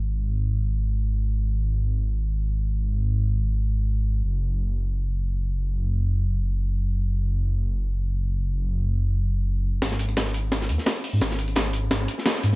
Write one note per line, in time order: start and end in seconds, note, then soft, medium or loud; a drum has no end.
0.00 4.22 G#1 medium
4.24 9.80 F#1 medium
9.82 10.16 G#1 loud
9.82 kick medium
9.82 snare soft
9.82 closed hi-hat medium
9.91 snare soft
9.99 closed hi-hat medium
10.09 closed hi-hat soft
10.17 10.71 G#1 medium
10.17 kick medium
10.17 snare soft
10.17 snare loud
10.17 closed hi-hat medium
10.26 snare soft
10.34 closed hi-hat medium
10.52 kick medium
10.52 snare medium
10.52 closed hi-hat medium
10.61 snare medium
10.69 10.78 D#2 medium
10.69 closed hi-hat medium
10.78 snare soft
10.86 kick medium
10.86 snare loud
10.86 snare soft
10.86 closed hi-hat medium
10.96 closed hi-hat soft
11.04 closed hi-hat medium
11.04 open hi-hat medium
11.13 11.21 G#2 loud
11.21 11.55 G#1 loud
11.21 kick loud
11.21 snare medium
11.21 closed hi-hat medium
11.31 snare soft
11.39 closed hi-hat medium
11.48 closed hi-hat soft
11.56 12.07 G#1 medium
11.56 kick medium
11.56 snare loud
11.56 snare medium
11.56 closed hi-hat medium
11.73 closed hi-hat medium
11.91 kick medium
11.91 snare medium
11.91 closed hi-hat medium
12.08 closed hi-hat medium
12.18 snare soft
12.26 kick medium
12.26 snare medium
12.26 snare loud
12.26 closed hi-hat medium
12.35 snare soft
12.35 closed hi-hat soft
12.43 12.55 G#2 loud
12.43 closed hi-hat medium